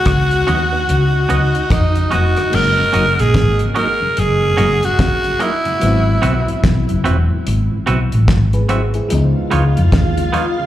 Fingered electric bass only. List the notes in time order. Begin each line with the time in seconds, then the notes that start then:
0.07 C#2
0.49 D#2
0.90 C#2
1.31 C#2
1.71 F2
2.13 F1
2.54 F#1
2.95 F#1
3.20 A#1
3.36 G#1
4.18 F#1
4.59 F#1
5.83 G#1
6.24 B1
6.65 B1
6.90 F#1
7.06 E1
7.47 G#1
7.89 B1
8.14 A1
8.29 G#1
9.12 C#2
9.53 C#2
9.78 F2
9.93 D#2